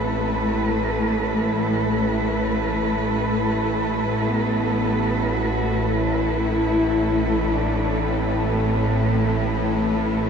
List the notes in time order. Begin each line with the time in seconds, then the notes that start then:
Already playing: A1 A2 A3 C4 E4 A4 B4
4.26 B3
5.32 F#4
5.87 E4
7.52 D4
8.07 C4